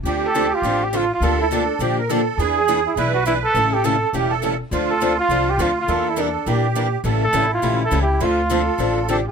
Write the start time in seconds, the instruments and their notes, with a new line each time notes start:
0.03 upright bass D2, steel-string acoustic guitar D3 F3 C4 D4 A4, accordion G4
0.26 trumpet A4
0.34 steel-string acoustic guitar D3 F3 C4 D4 A4
0.54 trumpet F4
0.62 upright bass A1, steel-string acoustic guitar D3 F3 C4 D4 A4
0.84 trumpet G4
0.93 steel-string acoustic guitar D3 F3 C4 D4 A4, accordion F4, trumpet F4
1.14 trumpet F4
1.20 upright bass D2, steel-string acoustic guitar D3 F3 A#3 D4 G4, accordion A4
1.42 trumpet E4
1.52 steel-string acoustic guitar D3 F3 A#3 D4 G4, trumpet D4
1.79 upright bass A#2, steel-string acoustic guitar D3 F3 A#3 D4 G4, accordion G4
1.99 accordion A#4
2.08 steel-string acoustic guitar D3 F3 A#3 D4 G4, accordion A4
2.38 upright bass E2, steel-string acoustic guitar E3 B3 D4 G#4 B4, accordion G#4
2.57 trumpet G#4
2.68 steel-string acoustic guitar E3 B3 D4 G#4 B4
2.86 trumpet E4
2.96 upright bass B1, steel-string acoustic guitar E3 B3 D4 G#4 B4, trumpet E4, accordion B4
3.14 trumpet F#4
3.25 steel-string acoustic guitar E3 B3 D4 G#4 B4, trumpet E4
3.44 trumpet A4
3.54 upright bass A1, steel-string acoustic guitar C#3 E3 G3 A3 C#4 E4 G4 A4, accordion A4
3.73 trumpet G4
3.84 steel-string acoustic guitar C#3 E3 G3 A3 C#4 E4 G4 A4, trumpet A4
4.13 upright bass E1, steel-string acoustic guitar C#3 E3 G3 A3 C#4 E4 G4 A4, accordion G4
4.30 accordion A4
4.42 steel-string acoustic guitar C#3 E3 G3 A3 C#4 E4 G4 A4
4.71 upright bass D2, steel-string acoustic guitar D3 F3 C4 D4 A4, accordion F4
4.90 trumpet A4
5.00 steel-string acoustic guitar D3 F3 C4 D4 A4
5.19 trumpet F4
5.29 upright bass C2, steel-string acoustic guitar D3 F3 C4 D4 A4
5.50 trumpet G4
5.58 upright bass D2, steel-string acoustic guitar D3 F3 C4 D4 A4, trumpet F4
5.81 trumpet F4
5.88 upright bass E2, steel-string acoustic guitar E3 G3 A#3 D4 E4 G4 A#4, accordion A4
6.10 trumpet E4
6.16 steel-string acoustic guitar E3 G3 A#3 D4 E4 G4 A#4
6.21 trumpet D4
6.46 upright bass A#2, steel-string acoustic guitar E3 G3 A#3 D4 E4 G4 A#4, accordion G4
6.75 steel-string acoustic guitar E3 G3 A#3 D4 E4 G4 A#4
7.04 upright bass A1, steel-string acoustic guitar C#3 E3 G3 A3 C#4 E4 G4 A4, accordion A4
7.24 trumpet A4
7.33 upright bass A1, steel-string acoustic guitar C#3 E3 G3 A3 C#4 E4 G4 A4, accordion E4
7.54 trumpet F4
7.62 upright bass A#1, steel-string acoustic guitar C#3 E3 G3 A3 C#4 E4 G4 A4
7.85 trumpet A4
7.91 upright bass C#2, steel-string acoustic guitar C#3 E3 G3 A3 C#4 E4 G4 A4
8.02 trumpet G4
8.20 upright bass D2, steel-string acoustic guitar D3 F3 C4 D4 A4, accordion F4, trumpet F4
8.50 steel-string acoustic guitar D3 F3 C4 D4 A4, accordion A4
8.78 upright bass A1, steel-string acoustic guitar D3 F3 C4 D4 A4
9.08 steel-string acoustic guitar D3 F3 C4 D4 A4, accordion G4, trumpet A4
9.27 accordion F4, trumpet G4